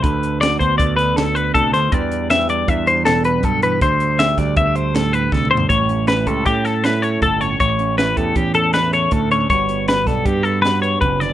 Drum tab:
HH |x--x--x--x--x--x--x--x--x--x--|x--x--x--x--x--x--x--x--x--x--|x--x--x--x--x--x--x--x--------|x--x--x--x--x--x--x--x--x--x--|
SD |------o--------o--o--------o--|------o-----------o-----------|------o--o--------o-----o-----|------o-----o--o--o-----------|
T2 |------------------------------|------------------------------|--------------------------o---|------------------------------|
FT |------------------------------|------------------------------|----------------------------o-|------------------------------|
BD |o--------o--o-----------o-----|o-----------o-----------o-----|o--------o--o-----------o-----|o--------o--o-----------o-----|

HH |x--x--x--x--x--x--x--x--x--x--|x--x--x--x--x--x--x--x--x--x--|
SD |------o-----------o-----------|------o--o--------o--------o--|
T2 |------------------------------|------------------------------|
FT |------------------------------|------------------------------|
BD |o--------o--o-----------o-----|o--------o--o-----------o-----|